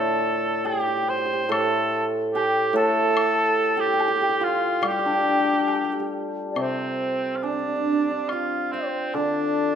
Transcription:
0.00 1.48 A2 medium
0.00 0.64 D3 medium
0.00 0.22 D4 medium
0.00 0.44 F4 soft
0.00 0.66 A4 soft
0.00 0.68 A4 loud
0.00 1.49 A4 medium
0.00 1.44 C5 medium
0.00 0.58 D5 loud
0.00 0.65 A5 medium
0.65 0.73 G4 medium
0.65 1.11 G4 medium
0.65 1.21 G5 medium
0.65 low woodblock soft
0.74 0.80 G4 medium
0.80 0.87 G4 medium
0.88 0.96 G4 medium
0.97 1.02 G4 medium
1.03 1.09 G4 medium
1.09 1.17 G4 medium
1.09 1.51 C5 loud
1.17 1.25 G4 medium
1.25 1.33 G4 medium
1.33 2.35 G4 medium
1.44 4.08 C5 medium
1.49 2.72 A2 medium
1.49 2.75 A4 medium
1.49 2.05 A4 loud
1.49 2.05 A5 medium
1.49 high woodblock medium
2.34 2.73 G4 loud
2.34 3.77 G4 medium
2.34 2.78 G5 medium
2.34 low woodblock soft
2.73 5.25 A2 medium
2.73 5.68 A4 loud
2.73 3.82 A4 loud
2.73 3.73 A5 loud
3.17 high woodblock medium
3.75 3.86 G4 medium
3.75 3.82 A5 medium
3.80 4.45 G4 loud
3.80 4.48 G5 medium
3.87 3.93 G4 medium
3.93 3.99 G4 medium
4.00 4.07 G4 medium
4.00 low woodblock medium
4.08 4.16 G4 medium
4.16 4.21 G4 medium
4.21 4.29 G4 medium
4.29 4.82 G4 medium
4.41 7.78 F4 medium
4.41 4.85 F4 loud
4.46 4.88 F5 medium
4.82 7.43 G3 medium
4.82 4.91 G4 medium
4.82 high woodblock medium
4.87 6.11 G4 loud
4.87 6.15 G5 loud
4.91 4.99 G4 medium
4.99 5.05 G4 medium
5.06 6.79 D4 medium
5.06 5.13 G4 medium
5.13 5.21 G4 medium
5.21 5.28 G4 soft
5.28 5.39 G4 medium
5.39 5.44 G4 soft
5.45 5.53 G4 medium
5.53 5.59 G4 soft
5.60 5.67 G4 medium
5.67 5.75 G4 soft
5.67 low woodblock soft
5.75 5.84 G4 medium
5.84 5.92 G4 medium
5.92 5.99 G4 medium
6.00 9.13 G4 medium
6.51 6.62 D5 medium
6.56 9.14 C3 medium
6.56 8.73 C4 medium
6.56 7.38 C4 medium
6.56 high woodblock medium
6.61 7.46 C5 medium
7.36 7.45 F4 medium
7.43 8.31 D4 medium
7.43 7.52 D4 medium
7.43 low woodblock soft
7.48 8.34 D5 medium
7.52 7.58 D4 soft
7.59 7.68 D4 medium
7.68 7.76 D4 soft
7.76 7.85 D4 medium
7.85 7.92 D4 soft
7.93 7.99 D4 medium
7.99 8.10 D4 soft
8.11 9.16 D4 medium
8.29 8.73 F4 medium
8.29 9.75 F4 medium
8.29 8.73 F5 medium
8.29 high woodblock soft
8.72 9.16 C4 medium
8.72 9.75 C4 medium
8.72 9.16 C5 medium
9.14 9.75 D3 medium
9.14 9.75 D4 medium
9.14 9.75 D5 medium
9.14 low woodblock soft

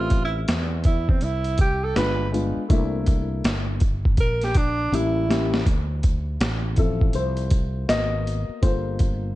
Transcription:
0.00 0.44 A1 loud
0.00 0.74 G3 medium
0.00 0.75 A3 medium
0.00 0.75 C4 medium
0.00 0.75 E4 medium
0.00 0.24 F4 loud
0.10 kick medium
0.10 closed hi-hat medium
0.24 0.40 E4 medium
0.48 1.19 E2 medium
0.48 snare loud
0.48 closed hi-hat medium
0.84 1.11 E4 medium
0.84 kick loud
0.84 closed hi-hat medium
1.09 1.25 C4 medium
1.09 kick loud
1.21 1.93 C2 medium
1.21 1.60 E4 loud
1.21 closed hi-hat medium
1.44 closed hi-hat medium
1.58 1.86 G4 loud
1.58 kick loud
1.58 closed hi-hat medium
1.84 1.96 A4 loud
1.95 2.54 G1 medium
1.95 2.23 G#3 medium
1.95 2.24 B3 medium
1.95 2.24 D4 medium
1.95 2.25 F4 medium
1.95 2.31 B4 loud
1.95 snare medium
1.95 closed hi-hat loud
2.32 2.60 G#3 medium
2.32 2.61 B3 medium
2.32 2.61 D4 medium
2.32 2.61 F4 medium
2.32 closed hi-hat medium
2.57 muted fretless electric bass stroke soft
2.69 3.41 C2 loud
2.69 3.71 A3 medium
2.69 3.71 A#3 medium
2.69 3.71 D4 medium
2.69 3.72 E4 loud
2.69 kick loud
2.69 closed hi-hat medium
3.06 kick medium
3.06 closed hi-hat medium
3.44 4.18 G1 medium
3.44 snare loud
3.44 closed hi-hat loud
3.80 kick loud
3.80 closed hi-hat medium
4.05 kick loud
4.17 4.89 A#1 loud
4.17 4.46 A#4 loud
4.17 kick medium
4.17 closed hi-hat medium
4.42 4.59 G4 loud
4.42 snare soft
4.42 closed hi-hat medium
4.55 4.97 D4 loud
4.55 kick loud
4.55 closed hi-hat medium
4.92 5.63 A1 loud
4.92 5.20 G3 medium
4.92 5.20 A#3 medium
4.92 5.21 C#4 medium
4.92 5.21 E4 medium
4.92 5.68 E4 medium
4.92 closed hi-hat loud
5.28 5.57 G3 medium
5.28 5.57 A#3 medium
5.28 5.57 C#4 medium
5.28 5.58 G4 medium
5.28 snare medium
5.28 closed hi-hat medium
5.54 snare medium
5.66 6.37 D2 loud
5.66 kick loud
5.66 closed hi-hat medium
6.03 kick medium
6.03 closed hi-hat medium
6.40 7.11 A1 medium
6.40 snare loud
6.40 closed hi-hat loud
6.76 7.84 F3 medium
6.76 7.85 C4 medium
6.76 7.85 E4 medium
6.76 7.16 A4 medium
6.76 kick loud
6.76 closed hi-hat medium
7.01 kick medium
7.13 7.85 C2 medium
7.13 7.91 C5 loud
7.13 closed hi-hat medium
7.37 closed hi-hat medium
7.50 kick loud
7.50 closed hi-hat medium
7.88 8.46 G#1 medium
7.88 8.59 A#3 medium
7.88 8.59 B3 soft
7.88 8.59 F#4 medium
7.88 8.65 D#5 loud
7.88 snare loud
7.88 closed hi-hat loud
8.27 closed hi-hat medium
8.49 muted fretless electric bass stroke soft
8.62 9.33 G1 loud
8.62 9.35 A#3 medium
8.62 9.35 F4 medium
8.62 9.35 A4 medium
8.62 9.35 C5 loud
8.62 kick loud
8.62 closed hi-hat loud
8.99 kick medium
8.99 closed hi-hat medium

